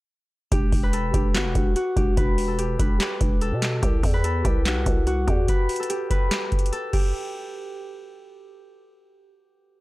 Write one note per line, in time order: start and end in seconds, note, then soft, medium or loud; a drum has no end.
0.52 0.72 E1 loud
0.52 1.14 G4 loud
0.52 kick loud
0.52 closed hi-hat medium
0.72 1.12 E1 loud
0.72 kick loud
0.72 open hi-hat medium
0.83 2.17 B4 medium
0.93 2.47 A4 medium
0.93 closed hi-hat medium
1.14 1.36 E1 loud
1.14 1.40 G4 medium
1.14 kick loud
1.14 closed hi-hat medium
1.34 1.46 G1 loud
1.34 1.76 F#4 medium
1.34 snare loud
1.34 clap medium
1.34 closed hi-hat medium
1.45 1.55 E1 loud
1.55 1.75 E1 loud
1.55 kick loud
1.55 closed hi-hat medium
1.76 2.02 F#4 medium
1.76 closed hi-hat medium
1.96 2.16 E1 loud
1.96 2.58 G4 medium
1.96 kick loud
1.96 closed hi-hat medium
2.17 2.77 E1 loud
2.17 2.79 B4 loud
2.17 kick loud
2.17 closed hi-hat medium
2.38 open hi-hat medium
2.48 3.41 A4 medium
2.59 2.99 G4 medium
2.59 closed hi-hat medium
2.79 2.99 E1 loud
2.79 4.13 B4 medium
2.79 kick loud
2.79 closed hi-hat medium
3.00 3.82 G4 medium
3.00 snare loud
3.00 clap medium
3.00 closed hi-hat medium
3.21 3.53 E1 loud
3.21 kick loud
3.21 closed hi-hat medium
3.41 4.24 A4 medium
3.41 closed hi-hat medium
3.52 3.81 B2 loud
3.62 snare loud
3.62 clap medium
3.62 closed hi-hat medium
3.82 4.03 C2 loud
3.82 4.44 G4 medium
3.82 kick loud
3.82 closed hi-hat medium
4.03 4.43 E2 loud
4.03 kick loud
4.03 open hi-hat medium
4.14 5.48 B4 medium
4.24 5.79 A4 medium
4.24 closed hi-hat medium
4.44 4.67 C2 loud
4.44 4.71 G4 medium
4.44 kick loud
4.44 closed hi-hat medium
4.65 4.77 B1 loud
4.65 5.06 F#4 medium
4.65 snare loud
4.65 clap medium
4.65 closed hi-hat medium
4.76 4.86 C2 loud
4.86 5.26 C2 loud
4.86 kick loud
4.86 closed hi-hat medium
5.07 5.33 F#4 medium
5.07 closed hi-hat medium
5.27 5.47 E2 loud
5.27 5.89 G4 medium
5.27 kick loud
5.27 closed hi-hat medium
5.48 6.10 B4 loud
5.48 kick loud
5.48 closed hi-hat medium
5.69 closed hi-hat soft
5.69 open hi-hat medium
5.76 6.72 A4 medium
5.76 closed hi-hat medium
5.83 closed hi-hat medium
5.90 6.31 G4 medium
5.90 closed hi-hat medium
6.10 8.15 B4 medium
6.10 kick loud
6.10 closed hi-hat medium
6.31 6.93 G4 medium
6.31 snare loud
6.31 clap medium
6.31 closed hi-hat medium
6.52 kick loud
6.52 closed hi-hat soft
6.59 closed hi-hat medium
6.66 closed hi-hat medium
6.72 8.92 A4 medium
6.72 closed hi-hat medium
6.93 9.29 G4 medium
6.93 kick loud
6.93 crash medium